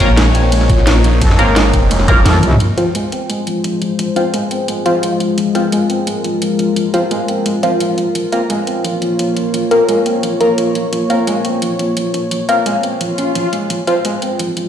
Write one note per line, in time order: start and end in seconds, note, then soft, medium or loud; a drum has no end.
0.00 0.68 A#1 loud
0.00 2.56 A#3 medium
0.00 0.07 A#3 medium
0.00 0.06 C4 medium
0.00 2.57 D#4 medium
0.00 0.07 F4 medium
0.00 0.07 A#4 loud
0.00 2.56 C#5 medium
0.00 kick medium
0.00 closed hi-hat medium
0.17 0.23 G#3 loud
0.17 snare loud
0.17 closed hi-hat medium
0.17 ride medium
0.26 snare soft
0.35 0.49 C4 medium
0.35 closed hi-hat medium
0.52 0.62 G#3 medium
0.52 closed hi-hat loud
0.52 ride medium
0.61 snare soft
0.69 1.20 A#1 loud
0.69 0.84 F3 medium
0.69 kick loud
0.69 closed hi-hat medium
0.78 snare soft
0.87 1.01 F3 medium
0.87 snare loud
0.87 closed hi-hat loud
0.87 ride medium
0.96 snare medium
1.04 1.10 F3 medium
1.04 closed hi-hat medium
1.22 1.37 F2 loud
1.22 1.27 F3 medium
1.22 kick loud
1.22 closed hi-hat loud
1.22 ride medium
1.30 snare soft
1.39 1.72 G#1 loud
1.39 1.45 A#3 loud
1.39 1.45 C4 medium
1.39 1.45 F4 medium
1.39 1.45 A#4 loud
1.39 closed hi-hat medium
1.56 1.62 G#3 loud
1.56 snare loud
1.56 closed hi-hat loud
1.56 ride medium
1.65 snare soft
1.74 2.24 F1 medium
1.74 1.88 C4 medium
1.74 kick medium
1.74 closed hi-hat medium
1.91 2.00 G#3 medium
1.91 closed hi-hat loud
1.91 ride medium
2.00 snare soft
2.08 2.22 F3 medium
2.08 2.15 A#3 loud
2.08 2.15 F4 medium
2.08 2.15 A#4 loud
2.08 kick loud
2.08 closed hi-hat medium
2.08 zap medium
2.26 2.42 F2 loud
2.26 2.40 F3 medium
2.26 snare medium
2.26 closed hi-hat loud
2.26 ride medium
2.34 high tom medium
2.43 2.59 C2 loud
2.43 2.49 F3 medium
2.43 closed hi-hat medium
2.52 mid tom medium
2.60 2.66 F3 medium
2.60 8.11 G#3 medium
2.60 13.66 F4 medium
2.60 5.35 C5 medium
2.60 closed hi-hat medium
2.78 2.84 F3 medium
2.78 2.83 C4 medium
2.78 2.84 C4 medium
2.78 2.84 F4 medium
2.78 closed hi-hat medium
2.95 3.01 G#3 loud
2.95 closed hi-hat medium
3.12 3.26 C4 medium
3.12 closed hi-hat medium
3.30 3.39 G#3 medium
3.30 closed hi-hat medium
3.47 3.61 F3 medium
3.47 closed hi-hat medium
3.64 3.78 F3 medium
3.64 closed hi-hat medium
3.82 3.87 F3 medium
3.82 closed hi-hat medium
3.99 4.05 F3 medium
3.99 closed hi-hat medium
4.16 4.23 F3 medium
4.16 4.22 C4 medium
4.16 4.23 C4 medium
4.16 4.23 F4 loud
4.16 closed hi-hat medium
4.34 4.39 G#3 loud
4.34 closed hi-hat medium
4.51 4.65 C4 medium
4.51 closed hi-hat medium
4.68 4.78 G#3 medium
4.68 closed hi-hat medium
4.86 5.00 F3 medium
4.86 4.92 F3 loud
4.86 4.92 C4 medium
4.86 4.92 F4 loud
4.86 closed hi-hat medium
5.03 5.17 F3 medium
5.03 closed hi-hat medium
5.20 5.26 F3 medium
5.20 closed hi-hat medium
5.38 5.43 F3 medium
5.38 8.12 A#4 medium
5.38 closed hi-hat medium
5.55 5.61 F3 medium
5.55 5.61 C4 medium
5.55 5.61 F4 medium
5.55 closed hi-hat medium
5.72 5.78 G#3 loud
5.72 closed hi-hat medium
5.90 6.04 C4 medium
5.90 closed hi-hat medium
6.07 6.17 G#3 medium
6.07 closed hi-hat medium
6.24 6.39 F3 medium
6.24 closed hi-hat medium
6.42 6.56 F3 medium
6.42 closed hi-hat medium
6.59 6.65 F3 medium
6.59 closed hi-hat medium
6.76 6.82 F3 medium
6.76 closed hi-hat medium
6.94 7.00 F3 medium
6.94 6.99 C4 medium
6.94 7.00 C4 medium
6.94 7.00 F4 loud
6.94 closed hi-hat medium
7.11 7.17 G#3 loud
7.11 closed hi-hat medium
7.28 7.43 C4 medium
7.28 closed hi-hat medium
7.46 7.55 G#3 medium
7.46 closed hi-hat medium
7.63 7.70 F3 medium
7.63 7.77 F3 medium
7.63 7.70 C4 medium
7.63 7.70 F4 loud
7.63 closed hi-hat medium
7.80 7.95 F3 medium
7.80 closed hi-hat medium
7.98 8.04 F3 medium
7.98 closed hi-hat medium
8.15 8.21 F3 medium
8.15 13.66 A#3 medium
8.15 13.66 C#5 medium
8.15 closed hi-hat medium
8.32 8.39 A#3 medium
8.32 8.38 C4 medium
8.32 8.39 F4 medium
8.32 8.39 A#4 medium
8.32 closed hi-hat medium
8.50 8.56 G#3 loud
8.50 closed hi-hat medium
8.67 8.81 C4 medium
8.67 closed hi-hat medium
8.84 8.94 F3 medium
8.84 closed hi-hat medium
9.02 9.16 F3 medium
9.02 closed hi-hat medium
9.19 9.33 F3 medium
9.19 closed hi-hat medium
9.36 9.42 F3 medium
9.36 closed hi-hat medium
9.54 9.60 F3 medium
9.54 closed hi-hat medium
9.71 9.78 A#3 loud
9.71 9.77 C4 medium
9.71 9.78 F4 medium
9.71 9.78 A#4 loud
9.71 closed hi-hat medium
9.89 9.94 G#3 loud
9.89 closed hi-hat medium
10.06 10.20 C4 medium
10.06 closed hi-hat medium
10.23 10.33 F3 medium
10.23 closed hi-hat medium
10.41 10.55 F3 medium
10.41 10.47 A#3 medium
10.41 10.47 F4 medium
10.41 10.47 A#4 loud
10.41 closed hi-hat medium
10.58 10.72 F3 medium
10.58 closed hi-hat medium
10.75 10.81 F3 medium
10.75 closed hi-hat medium
10.93 10.98 F3 medium
10.93 closed hi-hat medium
11.10 11.16 A#3 medium
11.10 11.16 C4 medium
11.10 11.16 F4 medium
11.10 11.16 A#4 medium
11.10 closed hi-hat medium
11.27 11.33 G#3 loud
11.27 closed hi-hat medium
11.45 11.59 C4 medium
11.45 closed hi-hat medium
11.62 11.71 F3 medium
11.62 closed hi-hat medium
11.79 11.94 F3 medium
11.79 closed hi-hat medium
11.97 12.11 F3 medium
11.97 closed hi-hat medium
12.14 12.20 F3 medium
12.14 closed hi-hat medium
12.31 12.37 F3 medium
12.31 closed hi-hat loud
12.49 12.55 A#3 loud
12.49 12.54 C4 medium
12.49 12.55 F4 medium
12.49 12.55 A#4 loud
12.49 closed hi-hat medium
12.66 12.72 G#3 loud
12.66 closed hi-hat medium
12.83 12.98 C4 medium
12.83 closed hi-hat medium
13.01 13.10 F3 medium
13.01 closed hi-hat medium
13.01 swell medium
13.18 13.32 C#4 medium
13.18 closed hi-hat medium
13.35 13.45 F3 loud
13.35 closed hi-hat medium
13.53 13.67 G#3 medium
13.53 closed hi-hat medium
13.70 13.76 F3 medium
13.70 14.69 G#3 medium
13.70 14.69 F4 medium
13.70 14.69 C5 medium
13.70 closed hi-hat medium
13.87 13.94 F3 medium
13.87 13.94 C4 medium
13.87 13.93 C4 medium
13.87 13.94 F4 medium
13.87 closed hi-hat medium
14.05 14.10 G#3 loud
14.05 closed hi-hat medium
14.22 14.36 C4 medium
14.22 closed hi-hat medium
14.39 14.49 F3 medium
14.39 closed hi-hat medium
14.57 14.69 F3 medium
14.57 closed hi-hat medium